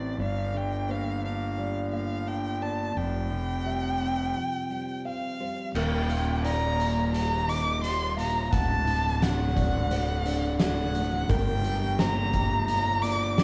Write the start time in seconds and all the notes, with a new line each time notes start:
Already playing: A1 A3 C4 E4 D5
0.18 G1 G2 D5 F5
0.54 D3 G5
0.89 A#3 C5 F5
1.24 D4 F5
1.58 G3 D5
1.92 A#3 F5
2.27 D4 G5
2.62 A#3 D5 A5
2.96 F1 F2 G5
3.32 C3
3.66 G3 E5
4.01 C4
4.36 F3
4.71 G3
5.05 C4 F5
5.40 G3 C5
5.74 D#1 D#2 A#4 G5, crash
6.09 A#2, closed hi-hat
6.43 D#3 D5 A#5, closed hi-hat
6.78 F4, closed hi-hat
7.13 G3 A#5, closed hi-hat
7.48 D#3 D#5 D6, closed hi-hat
7.82 G3 C6, closed hi-hat
8.17 A#2 F5 A#5, closed hi-hat
8.51 D1 D2 F#5 A5, kick, closed hi-hat
8.86 A2, closed hi-hat
9.21 D3 F#5, snare, closed hi-hat
9.55 F#4 D5, kick, closed hi-hat
9.90 A3 C5, closed hi-hat
10.25 D3 D5, closed hi-hat
10.59 A3 F#5, snare, closed hi-hat
10.95 A2, closed hi-hat
11.29 G1 G2 A#4 G5, kick, closed hi-hat
11.64 G3, closed hi-hat
11.99 A#3 C5 A#5, snare, closed hi-hat
12.33 G4, kick, closed hi-hat
12.67 A#5, closed hi-hat
13.02 A#3 D5 D6, closed hi-hat
13.36 D6, snare, closed hi-hat